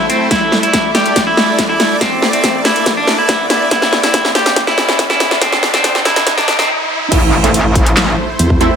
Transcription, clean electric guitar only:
0.10 0.28 C4 medium
0.31 0.58 E4 loud
0.63 0.90 E4 medium
0.95 1.22 G4 medium
1.27 1.63 E4 medium
1.69 1.96 E4 medium
2.01 2.28 C4 medium
2.33 2.60 C4 medium
2.65 2.92 E4 medium
2.97 3.15 D4 medium
3.18 3.45 E4 medium
3.50 3.68 E4 medium
3.71 3.98 E4 loud
4.03 4.30 E4 medium
4.35 4.62 G4 medium
4.67 5.03 E4 medium
5.10 5.37 E4 medium
5.41 5.69 C4 loud
5.74 6.00 C4 loud
6.05 6.32 E4 loud
6.37 6.55 D4 medium
6.59 6.69 C4 loud

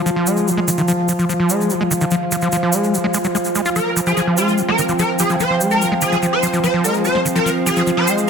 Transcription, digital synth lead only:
3.76 3.91 A#4 medium
4.07 4.21 G#4 medium
4.38 4.52 F4 medium
4.68 4.83 A#4 medium
4.99 5.09 A#4 medium
5.20 5.29 G#4 medium
5.40 5.55 C5 loud
5.71 5.86 A#4 medium
6.02 6.17 G#4 medium
6.33 6.47 C5 medium
6.64 6.73 C5 medium
6.84 6.94 A#4 medium
7.05 7.19 C5 medium
7.36 7.50 A#4 loud
7.66 7.81 G#4 loud
7.97 8.12 C5 loud

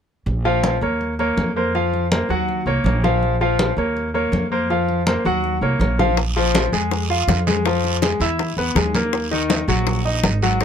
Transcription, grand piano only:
0.45 0.75 F3 medium
0.45 0.75 F4 medium
0.45 0.76 F5 medium
0.82 1.12 A#3 medium
0.82 1.13 A#4 medium
0.82 1.13 C#5 medium
1.19 1.49 A#3 medium
1.19 1.50 A#4 medium
1.19 1.50 C#5 medium
1.56 1.71 A#3 medium
1.56 1.71 A#4 medium
1.56 1.72 C5 medium
1.75 2.05 F3 medium
1.75 2.05 F4 medium
1.75 2.05 F5 medium
2.12 2.27 A#3 medium
2.12 2.27 A#4 medium
2.12 2.27 C5 medium
2.30 2.60 F#3 medium
2.30 2.60 F#4 medium
2.30 2.60 F#5 medium
2.67 2.82 A#3 medium
2.67 2.82 A#4 medium
2.67 2.82 C#5 medium
2.85 3.00 A#3 medium
2.85 3.00 A#4 medium
2.85 3.01 C#5 medium
3.04 3.34 F3 medium
3.04 3.34 F4 medium
3.04 3.34 F5 medium
3.41 3.71 F3 medium
3.41 3.71 F4 medium
3.41 3.71 F5 medium
3.78 4.08 A#3 medium
3.78 4.08 A#4 medium
3.78 4.08 C#5 medium
4.14 4.45 A#3 medium
4.14 4.45 A#4 medium
4.14 4.45 C#5 medium
4.52 4.67 A#3 medium
4.52 4.67 A#4 medium
4.52 4.67 C5 medium
4.70 5.00 F3 medium
4.70 5.00 F4 medium
4.70 5.01 F5 medium
5.07 5.22 A#3 medium
5.07 5.22 A#4 medium
5.07 5.22 C5 medium
5.25 5.56 F#3 medium
5.25 5.56 F#4 medium
5.25 5.56 F#5 medium
5.62 5.77 A#3 medium
5.62 5.77 A#4 medium
5.62 5.78 C#5 medium
5.81 5.96 A#3 medium
5.81 5.96 A#4 medium
5.81 5.96 C#5 medium
5.99 6.14 F3 medium
5.99 6.14 F4 medium
5.99 6.14 F5 medium
6.36 6.66 F3 medium
6.36 6.67 F4 medium
6.73 7.03 G#3 medium
6.73 7.03 G#4 medium
7.10 7.40 F4 medium
7.10 7.40 F5 medium
7.47 7.62 G#3 medium
7.47 7.62 G#4 medium
7.65 7.96 F3 medium
7.65 7.96 F4 medium
8.02 8.17 G#3 medium
8.02 8.18 G#4 medium
8.21 8.51 E4 medium
8.21 8.52 E5 medium
8.58 8.73 B3 medium
8.58 8.73 B4 medium
8.76 8.91 G#3 medium
8.76 8.91 G#4 medium
8.95 9.25 A#3 medium
8.95 9.25 A#4 medium
9.31 9.62 D#3 medium
9.31 9.62 D#4 medium
9.68 9.99 F#3 medium
9.68 9.99 F#4 medium
10.05 10.36 D#4 medium
10.05 10.36 D#5 medium
10.43 10.58 F#3 medium
10.43 10.58 F#4 medium
10.61 10.65 D#3 medium

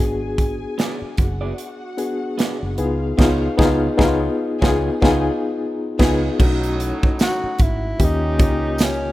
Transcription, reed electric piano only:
0.00 1.02 B3 medium
0.00 1.03 D4 medium
0.00 1.03 F#4 medium
0.00 1.03 G#4 medium
1.97 2.51 B3 medium
1.97 2.50 D4 medium
1.97 2.51 F#4 medium
1.97 2.51 G#4 medium
2.78 3.17 B3 medium
2.78 3.17 D#4 medium
2.78 2.86 E4 medium
2.78 3.18 G#4 loud
2.86 3.22 F4 medium
3.18 3.47 B3 medium
3.18 3.47 D#4 loud
3.18 3.47 G#4 medium
3.26 3.51 F4 medium
3.58 3.86 B3 loud
3.58 3.87 D#4 loud
3.58 3.87 G#4 loud
3.65 3.91 F4 loud
3.98 4.26 B3 loud
3.98 4.26 D#4 loud
3.98 4.27 G#4 medium
4.05 4.31 F4 loud
4.62 4.88 B3 loud
4.62 4.88 D#4 medium
4.62 4.88 F4 loud
4.62 4.89 G#4 loud
5.02 5.28 B3 medium
5.02 5.28 D#4 loud
5.02 5.28 F4 medium
5.02 5.29 G#4 loud
5.99 6.27 B3 loud
5.99 6.27 D#4 medium
5.99 6.28 F4 medium
5.99 6.28 G#4 loud
6.38 7.43 A3 medium
6.38 7.43 C#4 medium
6.38 6.47 D4 medium
6.38 7.44 F#4 loud
6.45 7.47 D#4 medium
7.99 8.33 A#3 medium
7.99 8.33 C#4 medium
7.99 8.33 F4 medium
7.99 8.33 G4 loud
8.38 9.12 A#3 medium
8.38 9.12 C#4 medium
8.38 9.12 F4 medium
8.38 9.12 G4 medium

